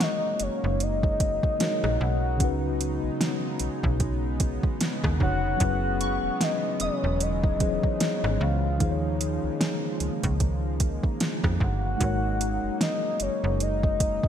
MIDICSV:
0, 0, Header, 1, 7, 480
1, 0, Start_track
1, 0, Key_signature, 5, "minor"
1, 0, Tempo, 800000
1, 1442, Time_signature, 4, 2, 24, 8
1, 8568, End_track
2, 0, Start_track
2, 0, Title_t, "Synth pluck"
2, 0, Program_c, 0, 84
2, 0, Note_on_c, 0, 82, 65
2, 0, Note_on_c, 0, 85, 56
2, 1084, Note_off_c, 0, 82, 0
2, 1204, Note_off_c, 0, 85, 0
2, 3605, Note_on_c, 0, 85, 71
2, 4087, Note_on_c, 0, 87, 66
2, 4925, Note_off_c, 0, 85, 0
2, 5406, Note_off_c, 0, 87, 0
2, 8568, End_track
3, 0, Start_track
3, 0, Title_t, "Soft synth lead"
3, 0, Program_c, 1, 80
3, 16, Note_on_c, 1, 75, 105
3, 255, Note_on_c, 1, 73, 90
3, 264, Note_off_c, 1, 75, 0
3, 496, Note_on_c, 1, 75, 109
3, 505, Note_off_c, 1, 73, 0
3, 1209, Note_off_c, 1, 75, 0
3, 1214, Note_on_c, 1, 78, 106
3, 1664, Note_off_c, 1, 78, 0
3, 3137, Note_on_c, 1, 78, 125
3, 3858, Note_on_c, 1, 75, 108
3, 3867, Note_off_c, 1, 78, 0
3, 4095, Note_on_c, 1, 73, 91
3, 4104, Note_off_c, 1, 75, 0
3, 4334, Note_on_c, 1, 75, 110
3, 4343, Note_off_c, 1, 73, 0
3, 5051, Note_on_c, 1, 77, 102
3, 5060, Note_off_c, 1, 75, 0
3, 5527, Note_off_c, 1, 77, 0
3, 6976, Note_on_c, 1, 78, 127
3, 7665, Note_off_c, 1, 78, 0
3, 7692, Note_on_c, 1, 75, 108
3, 7932, Note_on_c, 1, 73, 91
3, 7941, Note_off_c, 1, 75, 0
3, 8174, Note_on_c, 1, 75, 102
3, 8183, Note_off_c, 1, 73, 0
3, 8568, Note_off_c, 1, 75, 0
3, 8568, End_track
4, 0, Start_track
4, 0, Title_t, "Tine electric piano"
4, 0, Program_c, 2, 4
4, 0, Control_c, 2, 64, 127
4, 0, Note_on_c, 2, 56, 62
4, 0, Note_on_c, 2, 63, 59
4, 0, Note_on_c, 2, 66, 57
4, 0, Note_on_c, 2, 70, 57
4, 0, Note_on_c, 2, 73, 72
4, 926, Note_off_c, 2, 56, 0
4, 932, Note_off_c, 2, 63, 0
4, 938, Note_off_c, 2, 66, 0
4, 943, Note_off_c, 2, 70, 0
4, 949, Note_off_c, 2, 73, 0
4, 952, Note_on_c, 2, 56, 50
4, 958, Note_on_c, 2, 63, 46
4, 963, Note_on_c, 2, 66, 48
4, 969, Note_on_c, 2, 70, 48
4, 974, Note_on_c, 2, 73, 49
4, 1013, Note_off_c, 2, 73, 0
4, 1014, Note_on_c, 2, 75, 59
4, 1420, Note_on_c, 2, 49, 69
4, 1431, Note_on_c, 2, 61, 58
4, 1434, Note_off_c, 2, 63, 0
4, 1437, Note_off_c, 2, 56, 0
4, 1441, Note_on_c, 2, 63, 59
4, 1443, Note_off_c, 2, 66, 0
4, 1446, Note_off_c, 2, 70, 0
4, 1451, Control_c, 2, 64, 0
4, 1454, Note_on_c, 2, 66, 59
4, 1466, Note_on_c, 2, 71, 69
4, 1468, Note_off_c, 2, 75, 0
4, 1556, Control_c, 2, 64, 127
4, 3087, Note_off_c, 2, 49, 0
4, 3092, Note_off_c, 2, 61, 0
4, 3098, Note_off_c, 2, 63, 0
4, 3104, Note_off_c, 2, 66, 0
4, 3110, Note_off_c, 2, 71, 0
4, 3112, Note_on_c, 2, 49, 51
4, 3118, Note_on_c, 2, 61, 48
4, 3124, Note_on_c, 2, 63, 47
4, 3130, Note_on_c, 2, 66, 49
4, 3135, Note_on_c, 2, 73, 61
4, 3340, Note_on_c, 2, 54, 65
4, 3345, Note_off_c, 2, 61, 0
4, 3352, Note_on_c, 2, 61, 60
4, 3357, Note_off_c, 2, 49, 0
4, 3363, Note_off_c, 2, 63, 0
4, 3364, Note_on_c, 2, 64, 60
4, 3366, Note_off_c, 2, 66, 0
4, 3369, Note_off_c, 2, 73, 0
4, 3370, Control_c, 2, 64, 0
4, 3375, Note_on_c, 2, 68, 60
4, 3387, Note_on_c, 2, 71, 72
4, 3461, Control_c, 2, 64, 127
4, 4527, Note_off_c, 2, 54, 0
4, 4533, Note_off_c, 2, 61, 0
4, 4539, Note_off_c, 2, 64, 0
4, 4545, Note_off_c, 2, 68, 0
4, 4551, Note_off_c, 2, 71, 0
4, 4551, Note_on_c, 2, 54, 56
4, 4557, Note_on_c, 2, 61, 47
4, 4563, Note_on_c, 2, 52, 50
4, 4568, Note_on_c, 2, 68, 53
4, 4574, Note_on_c, 2, 72, 51
4, 4613, Note_off_c, 2, 72, 0
4, 4613, Note_on_c, 2, 73, 64
4, 5260, Note_on_c, 2, 51, 64
4, 5272, Note_on_c, 2, 63, 60
4, 5277, Note_off_c, 2, 54, 0
4, 5280, Note_off_c, 2, 61, 0
4, 5283, Note_off_c, 2, 52, 0
4, 5284, Note_on_c, 2, 53, 61
4, 5285, Note_off_c, 2, 68, 0
4, 5290, Control_c, 2, 64, 0
4, 5295, Note_on_c, 2, 68, 59
4, 5306, Note_on_c, 2, 72, 56
4, 5308, Note_off_c, 2, 73, 0
4, 5339, Note_off_c, 2, 72, 0
4, 5346, Note_on_c, 2, 73, 70
4, 5396, Control_c, 2, 64, 127
4, 7167, Note_off_c, 2, 51, 0
4, 7173, Note_off_c, 2, 63, 0
4, 7179, Note_off_c, 2, 53, 0
4, 7180, Note_on_c, 2, 56, 66
4, 7185, Note_off_c, 2, 68, 0
4, 7191, Note_on_c, 2, 63, 58
4, 7202, Note_on_c, 2, 66, 59
4, 7210, Note_off_c, 2, 73, 0
4, 7211, Control_c, 2, 64, 0
4, 7215, Note_on_c, 2, 70, 57
4, 7225, Note_on_c, 2, 73, 72
4, 7317, Control_c, 2, 64, 127
4, 8568, Note_off_c, 2, 56, 0
4, 8568, Note_off_c, 2, 63, 0
4, 8568, Note_off_c, 2, 66, 0
4, 8568, Note_off_c, 2, 70, 0
4, 8568, Note_off_c, 2, 73, 0
4, 8568, End_track
5, 0, Start_track
5, 0, Title_t, "Analog synth pad"
5, 0, Program_c, 3, 89
5, 0, Note_on_c, 3, 49, 82
5, 0, Note_on_c, 3, 54, 75
5, 0, Note_on_c, 3, 56, 71
5, 0, Note_on_c, 3, 58, 74
5, 0, Note_on_c, 3, 63, 83
5, 1425, Note_off_c, 3, 58, 0
5, 1444, Note_on_c, 3, 59, 71
5, 3339, Note_off_c, 3, 63, 0
5, 3340, Note_off_c, 3, 54, 0
5, 3360, Note_on_c, 3, 54, 73
5, 3361, Note_on_c, 3, 52, 87
5, 5259, Note_off_c, 3, 59, 0
5, 5262, Note_off_c, 3, 54, 0
5, 5263, Note_off_c, 3, 52, 0
5, 5283, Note_on_c, 3, 58, 71
5, 5284, Note_on_c, 3, 53, 76
5, 5284, Note_on_c, 3, 63, 85
5, 7184, Note_off_c, 3, 53, 0
5, 7205, Note_on_c, 3, 54, 69
5, 8568, Note_off_c, 3, 49, 0
5, 8568, Note_off_c, 3, 54, 0
5, 8568, Note_off_c, 3, 56, 0
5, 8568, Note_off_c, 3, 58, 0
5, 8568, Note_off_c, 3, 63, 0
5, 8568, End_track
6, 0, Start_track
6, 0, Title_t, "FM bass"
6, 0, Program_c, 4, 39
6, 244, Note_on_c, 4, 30, 50
6, 299, Note_off_c, 4, 30, 0
6, 384, Note_on_c, 4, 30, 90
6, 839, Note_off_c, 4, 30, 0
6, 1102, Note_on_c, 4, 34, 86
6, 1193, Note_off_c, 4, 34, 0
6, 1204, Note_on_c, 4, 35, 99
6, 1442, Note_on_c, 4, 37, 103
6, 1451, Note_off_c, 4, 35, 0
6, 1797, Note_off_c, 4, 37, 0
6, 1823, Note_on_c, 4, 35, 50
6, 1863, Note_off_c, 4, 35, 0
6, 2163, Note_on_c, 4, 35, 52
6, 2219, Note_off_c, 4, 35, 0
6, 2302, Note_on_c, 4, 35, 94
6, 2757, Note_off_c, 4, 35, 0
6, 3023, Note_on_c, 4, 39, 94
6, 3113, Note_off_c, 4, 39, 0
6, 3123, Note_on_c, 4, 29, 91
6, 3339, Note_off_c, 4, 29, 0
6, 3363, Note_on_c, 4, 30, 104
6, 3718, Note_off_c, 4, 30, 0
6, 3742, Note_on_c, 4, 28, 46
6, 3782, Note_off_c, 4, 28, 0
6, 4084, Note_on_c, 4, 28, 51
6, 4139, Note_off_c, 4, 28, 0
6, 4223, Note_on_c, 4, 28, 95
6, 4678, Note_off_c, 4, 28, 0
6, 4944, Note_on_c, 4, 32, 95
6, 5033, Note_off_c, 4, 32, 0
6, 5044, Note_on_c, 4, 37, 103
6, 5283, Note_on_c, 4, 39, 104
6, 5292, Note_off_c, 4, 37, 0
6, 5638, Note_off_c, 4, 39, 0
6, 5664, Note_on_c, 4, 37, 47
6, 5704, Note_off_c, 4, 37, 0
6, 6004, Note_on_c, 4, 37, 50
6, 6059, Note_off_c, 4, 37, 0
6, 6142, Note_on_c, 4, 37, 91
6, 6598, Note_off_c, 4, 37, 0
6, 6863, Note_on_c, 4, 41, 86
6, 6953, Note_off_c, 4, 41, 0
6, 6963, Note_on_c, 4, 31, 98
6, 7179, Note_off_c, 4, 31, 0
6, 7204, Note_on_c, 4, 32, 111
6, 7558, Note_off_c, 4, 32, 0
6, 7584, Note_on_c, 4, 30, 48
6, 7624, Note_off_c, 4, 30, 0
6, 7924, Note_on_c, 4, 30, 50
6, 7979, Note_off_c, 4, 30, 0
6, 8063, Note_on_c, 4, 30, 94
6, 8518, Note_off_c, 4, 30, 0
6, 8568, End_track
7, 0, Start_track
7, 0, Title_t, "Drums"
7, 2, Note_on_c, 9, 38, 110
7, 5, Note_on_c, 9, 42, 61
7, 62, Note_off_c, 9, 38, 0
7, 65, Note_off_c, 9, 42, 0
7, 237, Note_on_c, 9, 42, 68
7, 297, Note_off_c, 9, 42, 0
7, 482, Note_on_c, 9, 42, 62
7, 542, Note_off_c, 9, 42, 0
7, 620, Note_on_c, 9, 36, 109
7, 680, Note_off_c, 9, 36, 0
7, 721, Note_on_c, 9, 36, 98
7, 721, Note_on_c, 9, 42, 76
7, 781, Note_off_c, 9, 36, 0
7, 781, Note_off_c, 9, 42, 0
7, 860, Note_on_c, 9, 36, 100
7, 920, Note_off_c, 9, 36, 0
7, 961, Note_on_c, 9, 42, 75
7, 964, Note_on_c, 9, 38, 108
7, 1021, Note_off_c, 9, 42, 0
7, 1024, Note_off_c, 9, 38, 0
7, 1103, Note_on_c, 9, 37, 98
7, 1163, Note_off_c, 9, 37, 0
7, 1441, Note_on_c, 9, 36, 106
7, 1441, Note_on_c, 9, 42, 66
7, 1501, Note_off_c, 9, 36, 0
7, 1501, Note_off_c, 9, 42, 0
7, 1684, Note_on_c, 9, 42, 71
7, 1744, Note_off_c, 9, 42, 0
7, 1924, Note_on_c, 9, 38, 106
7, 1926, Note_on_c, 9, 42, 64
7, 1984, Note_off_c, 9, 38, 0
7, 1986, Note_off_c, 9, 42, 0
7, 2157, Note_on_c, 9, 42, 66
7, 2217, Note_off_c, 9, 42, 0
7, 2301, Note_on_c, 9, 36, 97
7, 2361, Note_off_c, 9, 36, 0
7, 2400, Note_on_c, 9, 42, 59
7, 2401, Note_on_c, 9, 36, 90
7, 2460, Note_off_c, 9, 42, 0
7, 2461, Note_off_c, 9, 36, 0
7, 2639, Note_on_c, 9, 42, 78
7, 2642, Note_on_c, 9, 36, 92
7, 2699, Note_off_c, 9, 42, 0
7, 2701, Note_off_c, 9, 36, 0
7, 2780, Note_on_c, 9, 36, 103
7, 2840, Note_off_c, 9, 36, 0
7, 2883, Note_on_c, 9, 42, 79
7, 2887, Note_on_c, 9, 38, 105
7, 2943, Note_off_c, 9, 42, 0
7, 2947, Note_off_c, 9, 38, 0
7, 3022, Note_on_c, 9, 36, 94
7, 3025, Note_on_c, 9, 37, 103
7, 3082, Note_off_c, 9, 36, 0
7, 3085, Note_off_c, 9, 37, 0
7, 3122, Note_on_c, 9, 36, 90
7, 3182, Note_off_c, 9, 36, 0
7, 3361, Note_on_c, 9, 42, 67
7, 3362, Note_on_c, 9, 36, 100
7, 3421, Note_off_c, 9, 42, 0
7, 3422, Note_off_c, 9, 36, 0
7, 3604, Note_on_c, 9, 42, 71
7, 3664, Note_off_c, 9, 42, 0
7, 3844, Note_on_c, 9, 38, 115
7, 3846, Note_on_c, 9, 42, 65
7, 3904, Note_off_c, 9, 38, 0
7, 3906, Note_off_c, 9, 42, 0
7, 4079, Note_on_c, 9, 42, 68
7, 4139, Note_off_c, 9, 42, 0
7, 4323, Note_on_c, 9, 42, 60
7, 4383, Note_off_c, 9, 42, 0
7, 4461, Note_on_c, 9, 36, 113
7, 4521, Note_off_c, 9, 36, 0
7, 4562, Note_on_c, 9, 42, 75
7, 4563, Note_on_c, 9, 36, 100
7, 4622, Note_off_c, 9, 42, 0
7, 4623, Note_off_c, 9, 36, 0
7, 4701, Note_on_c, 9, 36, 101
7, 4761, Note_off_c, 9, 36, 0
7, 4803, Note_on_c, 9, 42, 78
7, 4806, Note_on_c, 9, 38, 109
7, 4863, Note_off_c, 9, 42, 0
7, 4866, Note_off_c, 9, 38, 0
7, 4945, Note_on_c, 9, 37, 98
7, 5005, Note_off_c, 9, 37, 0
7, 5282, Note_on_c, 9, 42, 66
7, 5283, Note_on_c, 9, 36, 104
7, 5342, Note_off_c, 9, 42, 0
7, 5343, Note_off_c, 9, 36, 0
7, 5524, Note_on_c, 9, 42, 74
7, 5584, Note_off_c, 9, 42, 0
7, 5764, Note_on_c, 9, 38, 111
7, 5766, Note_on_c, 9, 42, 65
7, 5824, Note_off_c, 9, 38, 0
7, 5826, Note_off_c, 9, 42, 0
7, 6002, Note_on_c, 9, 42, 53
7, 6062, Note_off_c, 9, 42, 0
7, 6141, Note_on_c, 9, 36, 92
7, 6141, Note_on_c, 9, 42, 59
7, 6201, Note_off_c, 9, 36, 0
7, 6201, Note_off_c, 9, 42, 0
7, 6241, Note_on_c, 9, 42, 65
7, 6242, Note_on_c, 9, 36, 90
7, 6301, Note_off_c, 9, 42, 0
7, 6302, Note_off_c, 9, 36, 0
7, 6480, Note_on_c, 9, 42, 77
7, 6482, Note_on_c, 9, 36, 97
7, 6540, Note_off_c, 9, 42, 0
7, 6542, Note_off_c, 9, 36, 0
7, 6621, Note_on_c, 9, 36, 99
7, 6681, Note_off_c, 9, 36, 0
7, 6722, Note_on_c, 9, 42, 80
7, 6726, Note_on_c, 9, 38, 104
7, 6782, Note_off_c, 9, 42, 0
7, 6786, Note_off_c, 9, 38, 0
7, 6862, Note_on_c, 9, 36, 91
7, 6865, Note_on_c, 9, 37, 98
7, 6922, Note_off_c, 9, 36, 0
7, 6925, Note_off_c, 9, 37, 0
7, 6962, Note_on_c, 9, 36, 90
7, 7022, Note_off_c, 9, 36, 0
7, 7203, Note_on_c, 9, 36, 101
7, 7203, Note_on_c, 9, 42, 64
7, 7263, Note_off_c, 9, 36, 0
7, 7263, Note_off_c, 9, 42, 0
7, 7445, Note_on_c, 9, 42, 72
7, 7505, Note_off_c, 9, 42, 0
7, 7685, Note_on_c, 9, 38, 106
7, 7687, Note_on_c, 9, 42, 68
7, 7745, Note_off_c, 9, 38, 0
7, 7747, Note_off_c, 9, 42, 0
7, 7918, Note_on_c, 9, 42, 66
7, 7978, Note_off_c, 9, 42, 0
7, 8162, Note_on_c, 9, 42, 63
7, 8222, Note_off_c, 9, 42, 0
7, 8300, Note_on_c, 9, 36, 105
7, 8360, Note_off_c, 9, 36, 0
7, 8401, Note_on_c, 9, 42, 74
7, 8402, Note_on_c, 9, 36, 103
7, 8461, Note_off_c, 9, 42, 0
7, 8462, Note_off_c, 9, 36, 0
7, 8541, Note_on_c, 9, 36, 98
7, 8568, Note_off_c, 9, 36, 0
7, 8568, End_track
0, 0, End_of_file